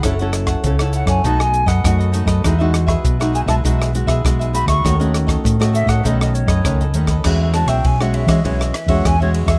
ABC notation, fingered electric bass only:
X:1
M:4/4
L:1/16
Q:1/4=100
K:Bmix
V:1 name="Fingered electric bass" clef=bass
F,,,4 C,,3 F,, B,,,3 F,, F,,3 F,, | E,,4 B,,,3 B,,, B,,,3 B,,, B,,,3 =D,, | D,,4 A,,3 A,, B,,,3 F,, C,,2 D,,2 | [K:E] E,,3 B,,, B,,,3 E, B,,,2 z E,, E,,3 E,, |]